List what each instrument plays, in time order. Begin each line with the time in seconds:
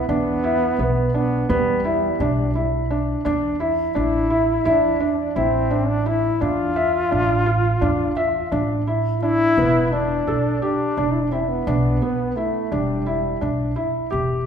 0.09 upright bass E2, trombone B3, felt piano D4
0.44 felt piano E4
0.79 upright bass B1, felt piano B3
1.14 trombone B3, felt piano D4
1.49 upright bass E2, trombone G3, felt piano B3
1.85 felt piano E4
2.20 upright bass B1, felt piano D4
2.55 felt piano E4
2.90 felt piano D4
3.25 upright bass E2, felt piano D4
3.60 felt piano E4
3.95 upright bass A1, felt piano D4, trombone E4
4.30 felt piano E4
4.65 upright bass E2, trombone D4, felt piano E4
5.00 felt piano D4
5.19 trombone D4
5.36 upright bass A1, trombone C4, felt piano E4
5.71 felt piano D4
5.88 trombone D4
6.06 felt piano E4, trombone E4
6.41 upright bass E2, felt piano D4, trombone F4
6.76 felt piano E5
7.11 upright bass A1, felt piano D4
7.46 felt piano F4
7.81 upright bass E2, felt piano D4
8.16 felt piano E5
8.52 upright bass A1, felt piano D4
8.87 felt piano E4
9.22 felt piano D4, trombone E4
9.57 upright bass E1, felt piano B3
9.92 trombone D4, felt piano D4
10.27 upright bass B1, felt piano A4
10.62 trombone D4, felt piano G4
10.97 upright bass E1, felt piano D4
11.13 trombone E4
11.23 trombone D4
11.32 trombone C4, felt piano E4
11.41 trombone D4
11.48 trombone B3
11.67 upright bass B1, felt piano D4
12.02 felt piano B3
12.36 trombone A3, felt piano E4
12.72 upright bass E1, trombone G3, felt piano D4
13.06 felt piano E4
13.41 upright bass B1, felt piano D4
13.76 felt piano E4
14.11 upright bass E1, felt piano G4